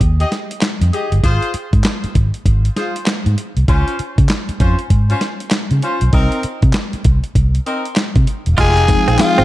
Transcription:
0.01 fingered electric bass D#2, kick, closed hi-hat
0.19 horn section G4 G#4 D#5, closed hi-hat
0.32 snare, closed hi-hat
0.51 closed hi-hat
0.61 snare, clap, closed hi-hat
0.81 fingered electric bass F2, closed hi-hat
0.93 horn section G4 G#4 D#5, closed hi-hat
1.12 fingered electric bass G1, closed hi-hat
1.23 fingered electric bass G#1, horn section F4 G#4 C5, kick, closed hi-hat
1.42 closed hi-hat
1.54 muted fingered electric bass stroke, closed hi-hat
1.73 fingered electric bass G#2, kick, closed hi-hat
1.84 snare, clap, closed hi-hat
2.04 muted fingered electric bass stroke, closed hi-hat
2.15 fingered electric bass G#1, kick, closed hi-hat
2.34 closed hi-hat
2.46 fingered electric bass G#1, kick, closed hi-hat
2.65 closed hi-hat
2.76 horn section F4 G#4 C5, snare, closed hi-hat
2.96 closed hi-hat
3.06 snare, clap, closed hi-hat
3.26 fingered electric bass G#2, closed hi-hat
3.38 closed hi-hat
3.57 fingered electric bass C2, closed hi-hat
3.68 fingered electric bass C#2, horn section C#4 F4 C5, kick, closed hi-hat
3.88 closed hi-hat
3.99 muted fingered electric bass stroke, closed hi-hat
4.18 fingered electric bass C#3, kick, closed hi-hat
4.29 snare, clap, closed hi-hat
4.49 muted fingered electric bass stroke, closed hi-hat
4.60 fingered electric bass F2, horn section C#4 F4 C5, kick, closed hi-hat
4.79 closed hi-hat
4.90 fingered electric bass G#2, kick, closed hi-hat
5.09 horn section C#4 F4 C5, closed hi-hat
5.21 snare, closed hi-hat
5.40 closed hi-hat
5.51 snare, clap, closed hi-hat
5.71 fingered electric bass C#3, closed hi-hat
5.82 horn section C#4 F4 C5, closed hi-hat
6.01 fingered electric bass B1, closed hi-hat
6.13 fingered electric bass C2, horn section C4 D#4 A#4, kick, closed hi-hat
6.32 closed hi-hat
6.43 muted fingered electric bass stroke, closed hi-hat
6.62 fingered electric bass C3, kick, closed hi-hat
6.73 snare, clap, closed hi-hat
6.93 muted fingered electric bass stroke, closed hi-hat
7.05 fingered electric bass C2, kick, closed hi-hat
7.24 closed hi-hat
7.35 fingered electric bass C2, kick, closed hi-hat
7.55 closed hi-hat
7.66 horn section C4 D#4 A#4, closed hi-hat
7.85 closed hi-hat
7.96 snare, clap, closed hi-hat
8.16 fingered electric bass C3, kick, closed hi-hat
8.27 closed hi-hat
8.46 fingered electric bass E1, closed hi-hat
8.57 fingered electric bass F1, string section G#3 F5 G5 D#6, horn section G#3 D#4 G4, clean electric guitar F4, tenor saxophone G#4, kick, closed hi-hat, crash, tambourine
8.77 closed hi-hat
8.88 tine electric piano F3 G#3 C4 D#4 G5, muted clean electric guitar stroke, kick, closed hi-hat, tambourine
9.08 fingered electric bass A#1, clean electric guitar C4, closed hi-hat
9.19 tenor saxophone F4, muted clean electric guitar stroke, snare, clap, closed hi-hat, tambourine
9.38 fingered electric bass G#1, clean electric guitar C4, closed hi-hat

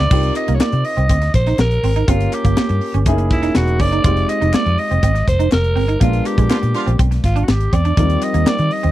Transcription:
Already playing: grand piano A3 D4 F4 G4 G#4 B4 D5 F5 A5 B5, alto saxophone D5
0.11 fingered electric bass C2, grand piano C4 D#4 F4 G4 A#4, clean electric guitar C4, kick, crash
0.23 closed hi-hat
0.35 alto saxophone D#5, muted clean electric guitar stroke, clap, closed hi-hat
0.48 fingered electric bass C2, clean electric guitar A#3, closed hi-hat
0.55 alto saxophone C#5
0.60 clean electric guitar A#3, alto saxophone D5, snare, clap
0.72 fingered electric bass C3, muted clean electric guitar stroke, closed hi-hat
0.85 alto saxophone D#5, open hi-hat
0.97 fingered electric bass C2, clean electric guitar C4, closed hi-hat
1.09 fingered electric bass D2, clean electric guitar C4, kick, closed hi-hat
1.22 muted clean electric guitar stroke, snare, closed hi-hat
1.34 fingered electric bass A#1, alto saxophone C5, kick, snare, closed hi-hat
1.46 clean electric guitar D#4, snare, closed hi-hat
1.58 fingered electric bass A#1, alto saxophone A#4, muted clean electric guitar stroke, snare, clap
1.71 closed hi-hat
1.83 fingered electric bass G#1, clean electric guitar C4, open hi-hat
1.96 clean electric guitar D#4, closed hi-hat
2.07 fingered electric bass G1, grand piano A#3 C#4 F4 G4 A#4, clean electric guitar C4, alto saxophone F4, kick, closed hi-hat
2.20 closed hi-hat
2.33 alto saxophone G4, muted clean electric guitar stroke, clap, closed hi-hat
2.45 fingered electric bass G1, clean electric guitar A#3, kick, closed hi-hat
2.57 clean electric guitar A#3, muted fingered electric bass stroke, snare, clap
2.69 fingered electric bass G2, muted clean electric guitar stroke, closed hi-hat
2.81 open hi-hat
2.94 fingered electric bass G1, clean electric guitar C#4, closed hi-hat
3.06 fingered electric bass F#1, grand piano A3 C#4 D#4 E4 G#4, clean electric guitar C#4, kick, closed hi-hat
3.12 grand piano A#3
3.18 muted clean electric guitar stroke, closed hi-hat
3.31 fingered electric bass E1, alto saxophone E4, kick, snare, closed hi-hat
3.42 clean electric guitar D#4, snare, closed hi-hat
3.55 fingered electric bass E1, alto saxophone F#4, muted clean electric guitar stroke, snare, clap
3.67 closed hi-hat
3.79 fingered electric bass F#1, clean electric guitar C#4, alto saxophone D5, kick, open hi-hat
3.92 clean electric guitar D#4, closed hi-hat
4.04 fingered electric bass F1, grand piano G#3 C4 D#4 F4 G4, clean electric guitar F4, kick, closed hi-hat
4.17 closed hi-hat
4.29 alto saxophone D#5, muted clean electric guitar stroke, clap, closed hi-hat
4.41 fingered electric bass F1, clean electric guitar D#4, closed hi-hat
4.53 clean electric guitar A#3, alto saxophone D5, snare, clap
4.66 fingered electric bass F2, muted clean electric guitar stroke, closed hi-hat
4.78 alto saxophone D#5, open hi-hat
4.91 fingered electric bass F1, clean electric guitar C4, closed hi-hat
5.03 fingered electric bass G#1, clean electric guitar C4, kick, closed hi-hat
5.15 muted clean electric guitar stroke, snare, closed hi-hat
5.28 fingered electric bass F1, alto saxophone C5, kick, snare, closed hi-hat
5.39 clean electric guitar D#4, closed hi-hat
5.51 fingered electric bass F1, alto saxophone A#4, muted clean electric guitar stroke, snare, clap
5.64 closed hi-hat
5.76 fingered electric bass G1, clean electric guitar C4, open hi-hat
5.88 clean electric guitar D#4, closed hi-hat
6.00 fingered electric bass A#1, grand piano G#3 B3 D4 F4 A#4, clean electric guitar A#3, alto saxophone F4, kick, closed hi-hat
6.13 closed hi-hat
6.26 alto saxophone G4, muted clean electric guitar stroke, clap, closed hi-hat
6.38 fingered electric bass A#1, clean electric guitar G#3, kick, closed hi-hat
6.50 horn section F3 B3 D4 F4, clean electric guitar A#3, snare, clap
6.62 fingered electric bass A#2, muted clean electric guitar stroke, closed hi-hat
6.74 horn section F3 B3 D4 F4, closed hi-hat
6.86 fingered electric bass A#1, clean electric guitar C4, closed hi-hat
6.99 fingered electric bass B1, clean electric guitar C4, kick, closed hi-hat
7.11 muted clean electric guitar stroke, snare, closed hi-hat
7.24 fingered electric bass G#1, alto saxophone F4, kick, snare, closed hi-hat
7.36 clean electric guitar D4, closed hi-hat
7.44 fingered electric bass G#1, alto saxophone F#4
7.48 alto saxophone G4, muted clean electric guitar stroke, snare, clap
7.60 closed hi-hat
7.73 fingered electric bass E2, clean electric guitar C4, alto saxophone D5, kick, closed hi-hat
7.85 clean electric guitar D4, closed hi-hat
7.97 fingered electric bass D#2, grand piano F3 C4 D#4 F4 A#4, clean electric guitar D#4, kick, closed hi-hat
8.02 grand piano G3
8.10 closed hi-hat
8.22 alto saxophone D#5, muted clean electric guitar stroke, clap, closed hi-hat
8.34 fingered electric bass D#2, clean electric guitar A#3, closed hi-hat
8.46 clean electric guitar A#3, alto saxophone D5, muted fingered electric bass stroke, snare, clap
8.58 fingered electric bass D#3, muted clean electric guitar stroke, closed hi-hat
8.71 alto saxophone D#5, open hi-hat
8.83 fingered electric bass D#2, clean electric guitar C4, closed hi-hat

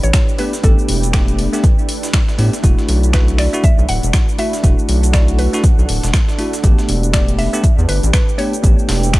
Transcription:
Already playing: string machine A3 D4 E4 G4 B4, ambient pad D4 B4 G5
0.03 analog synth bass A1, synth pluck C#5, closed hi-hat, cabasa
0.13 finger snap, kick, snare, closed hi-hat, cabasa
0.29 cabasa
0.38 tine electric piano A3 B3 D4 G4, synth pluck B4, closed hi-hat, open hi-hat
0.53 snare, closed hi-hat, cabasa
0.63 analog synth bass A1, tine electric piano A3 B3 D4 G4, synth pluck A4, kick, closed hi-hat, cabasa
0.79 cabasa
0.89 analog synth bass E1, closed hi-hat, open hi-hat
1.03 closed hi-hat, cabasa
1.13 tine electric piano A3 B3 D4 G4, finger snap, kick, snare, closed hi-hat, cabasa
1.28 closed hi-hat, cabasa
1.39 closed hi-hat, open hi-hat
1.53 tine electric piano A3 B3 D4 G4, snare, closed hi-hat, cabasa
1.64 kick, closed hi-hat, cabasa
1.79 cabasa
1.89 closed hi-hat, open hi-hat
2.03 snare, closed hi-hat, cabasa
2.13 finger snap, kick, snare, closed hi-hat, cabasa
2.28 snare, cabasa
2.38 analog synth bass A2, tine electric piano A3 B3 D4 G4, closed hi-hat, open hi-hat
2.53 snare, closed hi-hat, cabasa
2.63 analog synth bass E1, tine electric piano A3 D4 E4 F#4, string machine F#4, kick, closed hi-hat, cabasa
2.78 snare, cabasa
2.89 analog synth bass B1, ambient pad A4, closed hi-hat, open hi-hat
3.03 closed hi-hat, cabasa
3.13 tine electric piano A3 D4 E4 F#4, synth pluck B4, finger snap, kick, snare, closed hi-hat, cabasa
3.28 ambient pad F#5, closed hi-hat, cabasa
3.38 synth pluck D5, finger snap, open hi-hat
3.53 tine electric piano A3 D4 E4 F#4, closed hi-hat, cabasa
3.64 synth pluck E5, kick, closed hi-hat, cabasa
3.78 analog synth bass B1, cabasa
3.89 analog synth bass D1, synth pluck F#5, closed hi-hat, open hi-hat
4.03 analog synth bass E1, closed hi-hat, cabasa
4.13 finger snap, kick, snare, closed hi-hat, cabasa
4.29 cabasa
4.38 tine electric piano A3 D4 E4 F#4, synth pluck E5, closed hi-hat, open hi-hat
4.53 snare, closed hi-hat, cabasa
4.63 analog synth bass E1, tine electric piano A3 D4 E4 F#4, string machine A4, kick, closed hi-hat, cabasa
4.79 cabasa
4.89 analog synth bass B1, closed hi-hat, open hi-hat
5.03 closed hi-hat, cabasa
5.13 tine electric piano A3 D4 E4 F#4, synth pluck D5, finger snap, kick, snare, closed hi-hat, cabasa
5.28 closed hi-hat, cabasa
5.39 synth pluck B4, closed hi-hat, open hi-hat
5.53 tine electric piano A3 D4 E4 F#4, snare, closed hi-hat, cabasa
5.64 kick, closed hi-hat, cabasa
5.78 analog synth bass B1, cabasa
5.89 analog synth bass D1, closed hi-hat, open hi-hat
6.03 analog synth bass E1, snare, closed hi-hat, cabasa
6.14 finger snap, kick, snare, closed hi-hat, cabasa
6.28 snare, cabasa
6.38 tine electric piano A3 D4 E4 F#4, closed hi-hat, open hi-hat
6.53 snare, closed hi-hat, cabasa
6.63 analog synth bass A1, tine electric piano A3 B3 D4 G4, string machine A3 D4 E4 G4 B4, kick, closed hi-hat, cabasa
6.69 ambient pad B4
6.78 snare, cabasa
6.89 analog synth bass E1, closed hi-hat, open hi-hat
7.03 closed hi-hat, cabasa
7.13 tine electric piano A3 B3 D4 G4, synth pluck D5, finger snap, kick, snare, closed hi-hat, cabasa
7.28 ambient pad G5, closed hi-hat, cabasa
7.39 synth pluck E5, open hi-hat
7.53 tine electric piano A3 B3 D4 G4, closed hi-hat, cabasa
7.64 kick, closed hi-hat, cabasa
7.78 analog synth bass E2, cabasa
7.89 analog synth bass G1, synth pluck B4, closed hi-hat, open hi-hat
8.03 analog synth bass A1, closed hi-hat, cabasa
8.13 synth pluck B4, finger snap, kick, snare, closed hi-hat, cabasa
8.29 cabasa
8.38 tine electric piano A3 B3 D4 G4, synth pluck C#5, closed hi-hat, open hi-hat
8.53 closed hi-hat, cabasa
8.63 analog synth bass A1, tine electric piano A3 B3 D4 G4, string machine A4, kick, closed hi-hat, cabasa
8.79 cabasa
8.89 analog synth bass E1, snare, closed hi-hat, open hi-hat
9.03 closed hi-hat, cabasa
9.13 tine electric piano A3 B3 D4 G4, finger snap, kick, snare, closed hi-hat, cabasa

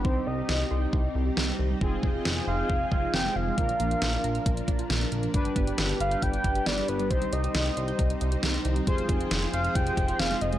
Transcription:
Already playing: string machine G3
0.05 analog synth bass C2, synth arpeggio sound D#3, analog polysynth C4 D#4 G4, string machine C4 D#4, soft synth lead C5, kick
0.16 synth arpeggio sound G3
0.27 analog synth bass C2, synth arpeggio sound C4, soft synth lead D#5
0.38 synth arpeggio sound G4
0.49 analog synth bass C2, snare
0.60 synth arpeggio sound G5
0.71 analog synth bass C2, synth arpeggio sound C6
0.82 synth arpeggio sound G6
0.93 analog synth bass C2, synth arpeggio sound C6, kick
1.15 analog synth bass C2, synth arpeggio sound D#5
1.26 synth arpeggio sound G4
1.37 analog synth bass C2, synth arpeggio sound C4, snare
1.48 synth arpeggio sound G3
1.59 analog synth bass C2, synth arpeggio sound D#3
1.70 synth arpeggio sound G3
1.81 analog synth bass F1, synth arpeggio sound D#3, string machine F3 G#4 G5, analog polysynth C4 F4 G#4, kick
1.92 synth arpeggio sound G#3
2.03 analog synth bass F1, synth arpeggio sound C4, kick
2.14 synth arpeggio sound F4
2.25 analog synth bass F1, snare
2.37 synth arpeggio sound G#5
2.48 analog synth bass F1, soft synth lead F5, synth arpeggio sound C6
2.59 synth arpeggio sound F6
2.70 analog synth bass F1, synth arpeggio sound C6, kick
2.92 analog synth bass F1, synth arpeggio sound D#5, kick
3.03 synth arpeggio sound F4
3.14 analog synth bass F1, synth arpeggio sound C4, soft synth lead G5, snare
3.25 synth arpeggio sound G#3
3.36 analog synth bass F1, synth arpeggio sound D#3, soft synth lead F5
3.47 synth arpeggio sound G#3
3.58 analog synth bass A#1, synth arpeggio sound D3, string machine A#3 D4, analog polysynth D4 F4 A#4, kick, closed hi-hat
3.69 synth arpeggio sound F3, closed hi-hat
3.80 analog synth bass A#1, synth arpeggio sound A#3, closed hi-hat
3.91 synth arpeggio sound F4, closed hi-hat
4.02 analog synth bass A#1, snare, closed hi-hat
4.13 synth arpeggio sound F5, closed hi-hat
4.24 analog synth bass A#1, synth arpeggio sound A#5, closed hi-hat
4.35 synth arpeggio sound F6, closed hi-hat
4.46 analog synth bass A#1, synth arpeggio sound A#5, kick, closed hi-hat
4.57 closed hi-hat
4.68 analog synth bass A#1, synth arpeggio sound D5, kick, closed hi-hat
4.79 synth arpeggio sound F4, closed hi-hat
4.90 analog synth bass A#1, synth arpeggio sound A#3, snare, closed hi-hat
5.01 synth arpeggio sound F3, closed hi-hat
5.12 analog synth bass A#1, synth arpeggio sound D3, closed hi-hat
5.23 synth arpeggio sound F3, closed hi-hat
5.34 analog synth bass G1, synth arpeggio sound D3, string machine G3 B3, analog polysynth D4 G4 B4, kick, closed hi-hat
5.45 synth arpeggio sound G3, closed hi-hat
5.56 analog synth bass G1, synth arpeggio sound B3, kick, closed hi-hat
5.67 synth arpeggio sound G4, closed hi-hat
5.78 analog synth bass G1, snare, closed hi-hat
5.89 synth arpeggio sound G5, closed hi-hat
6.00 analog synth bass G1, soft synth lead F5, synth arpeggio sound B5, closed hi-hat
6.11 synth arpeggio sound G6, closed hi-hat
6.22 analog synth bass G1, soft synth lead G5, synth arpeggio sound B5, kick, closed hi-hat
6.34 closed hi-hat
6.44 analog synth bass G1, synth arpeggio sound D5, kick, closed hi-hat
6.55 synth arpeggio sound G4, closed hi-hat
6.66 analog synth bass G1, synth arpeggio sound B3, soft synth lead D5, snare, closed hi-hat
6.78 synth arpeggio sound G3, closed hi-hat
6.88 analog synth bass G1, synth arpeggio sound D3, soft synth lead B4, closed hi-hat
7.00 synth arpeggio sound G3, closed hi-hat
7.11 analog synth bass C2, synth arpeggio sound D#3, string machine C4 D#4, analog polysynth D#4 G4 C5, soft synth lead C5, kick, closed hi-hat
7.22 synth arpeggio sound G3, closed hi-hat
7.33 analog synth bass C2, synth arpeggio sound C4, soft synth lead D#5, closed hi-hat
7.44 synth arpeggio sound G4, closed hi-hat
7.54 analog synth bass C2, snare, closed hi-hat
7.66 synth arpeggio sound G5, closed hi-hat
7.77 analog synth bass C2, synth arpeggio sound C6, closed hi-hat
7.88 synth arpeggio sound G6, closed hi-hat
7.99 analog synth bass C2, synth arpeggio sound C6, kick, closed hi-hat
8.10 closed hi-hat
8.21 analog synth bass C2, synth arpeggio sound D#5, closed hi-hat
8.32 synth arpeggio sound G4, closed hi-hat
8.43 analog synth bass C2, synth arpeggio sound C4, snare, closed hi-hat
8.54 synth arpeggio sound G3, closed hi-hat
8.65 analog synth bass C2, synth arpeggio sound D#3, closed hi-hat
8.76 synth arpeggio sound G3, closed hi-hat
8.87 analog synth bass F1, synth arpeggio sound D#3, string machine F3 G#4 G5, analog polysynth F4 G#4 C5, kick, closed hi-hat
8.98 synth arpeggio sound G#3, closed hi-hat
9.09 analog synth bass F1, synth arpeggio sound C4, kick, closed hi-hat
9.20 synth arpeggio sound F4, closed hi-hat
9.31 analog synth bass F1, snare, closed hi-hat
9.42 synth arpeggio sound G#5, closed hi-hat
9.53 analog synth bass F1, soft synth lead F5, synth arpeggio sound C6, closed hi-hat
9.64 synth arpeggio sound F6, closed hi-hat
9.75 analog synth bass F1, soft synth lead G5, synth arpeggio sound C6, kick, closed hi-hat
9.87 closed hi-hat
9.97 analog synth bass F1, synth arpeggio sound D#5, kick, closed hi-hat
10.08 synth arpeggio sound F4, closed hi-hat
10.19 analog synth bass F1, synth arpeggio sound C4, soft synth lead F5, snare, closed hi-hat
10.31 synth arpeggio sound G#3, closed hi-hat
10.41 analog synth bass F1, synth arpeggio sound D#3, soft synth lead D#5, closed hi-hat
10.53 synth arpeggio sound G#3, closed hi-hat

